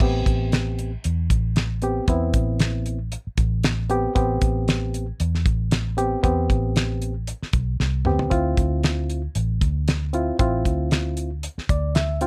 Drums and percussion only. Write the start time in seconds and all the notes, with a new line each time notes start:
0.00 kick, crash
0.26 kick, closed hi-hat
0.52 snare, closed hi-hat
0.79 closed hi-hat
1.04 closed hi-hat
1.30 kick, closed hi-hat
1.56 snare, closed hi-hat
1.82 closed hi-hat
2.08 kick, closed hi-hat
2.34 kick, closed hi-hat
2.59 snare, closed hi-hat
2.86 closed hi-hat
3.12 closed hi-hat
3.37 kick, closed hi-hat
3.64 snare, closed hi-hat
3.90 closed hi-hat
4.16 kick, closed hi-hat
4.41 kick, closed hi-hat
4.68 snare, closed hi-hat
4.94 closed hi-hat
5.20 closed hi-hat
5.35 snare
5.46 kick, closed hi-hat
5.71 snare, closed hi-hat
5.98 closed hi-hat
6.24 kick, closed hi-hat
6.50 kick, closed hi-hat
6.76 snare, closed hi-hat
7.02 closed hi-hat
7.27 closed hi-hat
7.42 snare
7.53 kick, closed hi-hat
7.80 snare
8.05 mid tom
8.19 floor tom
8.31 kick, closed hi-hat
8.57 kick, closed hi-hat
8.83 snare, closed hi-hat
9.10 closed hi-hat
9.35 closed hi-hat
9.61 kick, closed hi-hat
9.88 snare, closed hi-hat
10.13 closed hi-hat
10.39 kick, closed hi-hat
10.65 kick, closed hi-hat
10.91 snare, closed hi-hat
11.17 closed hi-hat
11.43 closed hi-hat
11.58 snare
11.69 kick, closed hi-hat
11.95 snare, closed hi-hat
12.21 closed hi-hat